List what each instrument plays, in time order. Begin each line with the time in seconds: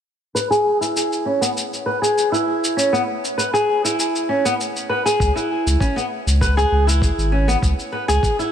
0.35 nylon-string guitar B4, cabasa
0.50 nylon-string guitar G#4, cabasa
0.81 nylon-string guitar E4, cabasa
0.97 cabasa
1.13 cabasa
1.26 nylon-string guitar C#4
1.41 nylon-string guitar B3, cabasa
1.57 cabasa
1.73 cabasa
1.86 nylon-string guitar B4
2.02 nylon-string guitar G#4, cabasa
2.18 cabasa
2.32 nylon-string guitar E4, cabasa
2.64 cabasa
2.77 nylon-string guitar C#4, cabasa
2.93 nylon-string guitar B3, cabasa
3.25 cabasa
3.38 nylon-string guitar B4, cabasa
3.54 nylon-string guitar G#4, cabasa
3.84 nylon-string guitar E4, cabasa
3.99 cabasa
4.16 cabasa
4.29 nylon-string guitar C#4
4.45 nylon-string guitar B3, cabasa
4.60 cabasa
4.76 cabasa
4.89 nylon-string guitar B4
5.06 nylon-string guitar G#4, cabasa
5.20 sub bass C#2, kick, cabasa
5.36 nylon-string guitar E4, cabasa
5.66 sub bass C#2, cabasa
5.80 nylon-string guitar C#4, kick, cabasa
5.96 nylon-string guitar B3, cabasa
6.26 sub bass C#2, cabasa
6.41 nylon-string guitar B4, kick, cabasa
6.57 nylon-string guitar G#4, cabasa
6.72 sub bass C#2
6.87 nylon-string guitar E4, cabasa
7.02 kick, cabasa
7.17 sub bass G#1, cabasa
7.32 nylon-string guitar C#4
7.48 nylon-string guitar B3, cabasa
7.62 sub bass C#2, kick, cabasa
7.79 cabasa
7.92 nylon-string guitar B4
8.08 sub bass C#2, nylon-string guitar G#4, cabasa
8.23 kick, cabasa
8.39 nylon-string guitar E4, cabasa